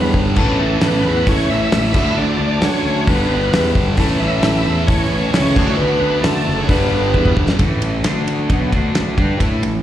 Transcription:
Already playing: E2 G2 D3 G3 D4 G4 C#5
0.14 G1, kick
0.36 A1 A2 E3 A3 C#4 E4 A4, kick, crash
0.59 A1 A3 A4
0.81 A1 B3 C#4 E4 A4 B4, snare, open hi-hat
1.04 E2
1.26 A1 C#4 E4 A4 C#5, kick, open hi-hat
1.48 A1 A2 E3 A3 E4 E5
1.71 A1 A2 E3 A3 C#4 E4 A4, snare, open hi-hat
1.93 D2 D3 A3 D4 F#4 A4, kick, crash
1.98 D4
2.17 D2 D4 D5
2.41 D2
2.61 D2 A3 C#4 F#4 A4 C#5, snare, open hi-hat
2.85 D2
3.06 G1 G2 D3 G3 B3 D4 G4 B4, kick, open hi-hat
3.29 G1
3.52 E2 D4 G4 B4, snare, open hi-hat
3.75 G1, kick
3.96 A1 A2 E3 A3 C#4 E4 A4, kick, open hi-hat
4.20 A1 E4 E5
4.43 A1 C#4 E4 A4, snare, open hi-hat
4.66 E2
4.87 A1 C#4 E4 A4 C#5, kick, open hi-hat
5.09 A1 A2 E3 A3
5.32 C#2 A2 E3 A3 C#4 E4 A4 C#5, snare, open hi-hat
5.54 D2 D3 A3 D4 F#4 A4, kick, crash
5.76 D2 B3 B4
6.02 D2
6.22 D2 A3 D4 F#4 A4, snare, open hi-hat
6.47 F#1
6.61 C#4 C#5
6.67 G1 G2 D3 G3 B3 D4 G4 B4, kick, open hi-hat
6.92 G1
7.14 E2 D4 G4 B4, kick
7.25 kick
7.37 G1, kick
7.49 snare
7.59 A1 A2 E3 A3, kick, ride
7.82 ride
8.04 D2 D3 A3 D4, snare, ride
8.28 ride
8.49 B1 B2 F#3 B3, kick, ride
8.72 D2 D3 A3 D4, kick, ride
8.95 snare, ride
9.17 G2 G3 D4 G4, kick, ride
9.40 A2 A3 E4 A4, kick, ride
9.63 A1 A2 E3, ride

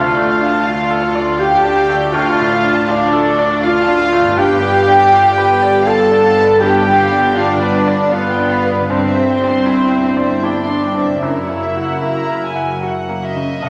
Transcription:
Already playing: D2 D3 A3 D4 F4 F5
0.11 D5
0.17 A3
0.28 F5
0.41 D4
0.46 A5
0.65 F4 F5
0.83 D5
0.90 A4
1.02 A4
1.15 D5
1.20 D5
1.39 F4 G4 F5 G5
1.59 A5
1.65 D4
1.77 F5
1.89 A3
1.95 D5
2.13 D2 F4 A4 F5
2.34 D5
2.39 A2
2.52 F5
2.64 D4
2.70 A5
2.88 D4 F4 D5 F5
3.09 A4 D5
3.26 A4
3.39 D5
3.44 D5
3.62 F4 F5
3.81 A5
3.88 D4
3.99 F5
4.12 A3
4.17 G2 D5
4.24 B3
4.29 D4
4.33 F4 B4
4.37 G1 G2 B3 F4 G4 G5
4.53 D5
4.62 B3
4.73 F5
4.88 D4
4.92 G5
5.10 F4 F5
5.29 D5
5.38 B4
5.47 B4
5.62 D5
5.84 F4 A4 F5 A5
6.04 G5
6.11 D4
6.23 F5
6.37 B3
6.41 D5
6.60 G2 G4 B4 G5
6.79 D5
6.87 D3
6.96 F5
7.11 D4
7.16 G5
7.35 D4 F4 D5 F5
7.54 D5
7.62 B4
7.73 B4
7.88 D5
7.93 D5
8.11 B3 F4 B4 F5
8.31 G5
8.39 D4
8.51 F5
8.65 B3
8.72 G2 D5
8.76 C4
8.80 D4
8.85 E4
8.89 G1 G2 C4 D4 E4 C5 D5
9.10 E5
9.16 C4
9.30 G5
9.41 D4
9.49 C6
9.66 E4 G5
9.87 C5 E5
10.06 D5
10.17 D5
10.26 E5
10.42 D4 E4 D5 G5
10.64 C6
10.70 D4
10.83 G5
10.95 C4
11.02 F#2 E5
11.09 A#3
11.13 F#4
11.21 F#1 F#2 A#3 E4 F#4 A#4 E5
11.44 C#5
11.49 A#3
11.63 E5
11.76 F#4
11.83 F#5
12.02 A#3 A#5
12.29 A#4
12.44 G#5
12.56 F#5
12.83 F#4 F#5
13.09 A#3
13.23 D#5 E5
13.36 C#3
13.61 B1 B2 D#4 C#5 D#5 F#5

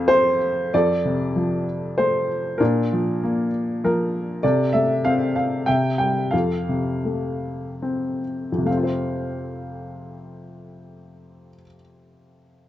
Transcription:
Already playing: F2 A3 C4 F4 A4 F5
0.08 C5
0.74 F2 A4 D5
1.05 C3
1.36 F3
1.98 A3 C5
2.58 A#2 D4 A#4
2.93 F3
3.23 A#3
3.84 F3 A#4
4.43 C3 A4 D5
4.73 A3 E5
5.05 C4 F5
5.36 F5
5.66 C3 E5 G5
5.98 G3 G5
6.31 F2 A4 F5
6.69 C3
7.05 A3
7.82 C4
8.52 F2
8.58 C3
8.65 A3 F5
8.70 C4
8.77 F4
8.83 C5

